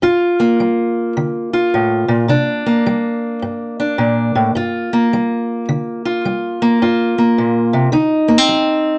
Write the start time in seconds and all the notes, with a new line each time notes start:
0.02 G2 F4
0.40 A#3
0.60 G3
1.17 D3
1.53 F4
1.74 A2
2.08 A#2
2.28 C3 D4
2.66 A#3
2.86 G3
3.42 G2
3.80 D4
3.98 A#2
4.35 A2
4.55 G2 F4
4.93 A#3
5.13 G3
5.69 D3
6.05 F4
6.25 G3
6.62 A#3
6.82 G2 F4
7.18 A#3
7.38 A#2
7.73 C3
7.92 D3 D#4
8.28 A#3
8.38 C4
8.49 F#3